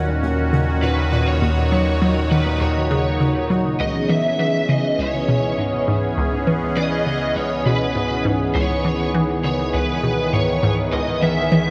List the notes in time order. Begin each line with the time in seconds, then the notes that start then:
Already playing: D#2 A#2 D#3 C#4 F#4 F#5
0.23 D#2
0.53 C#3
0.82 A#2 B4
1.12 A#2
1.27 C#5
1.42 D#2 D#4
1.72 F#3
2.02 F#3
2.31 D#3 B4
2.61 D#2 C#5
2.91 C#3
3.20 C#3
3.50 F#3
3.79 C#2 E3 B3 C#4 G#4 D#5
4.09 E3 E5
4.39 E3 E5
4.69 C#3 D#5
4.99 C#2 C#5
5.28 B2
5.58 G#2
5.88 G#2
6.17 C#2
6.47 E3
6.77 E3 D#5
7.06 C#3
7.36 C#2 C#5
7.66 B2 B4
7.95 G#2
8.25 G#2
8.55 C#2 D#3 C#5
8.85 E3
9.14 E3
9.44 C#3 C#5
9.74 C#2 B4
10.03 B2
10.33 G#2 C#5
10.63 G#2
10.92 C#2 D#5
11.22 E3 E5
11.52 E3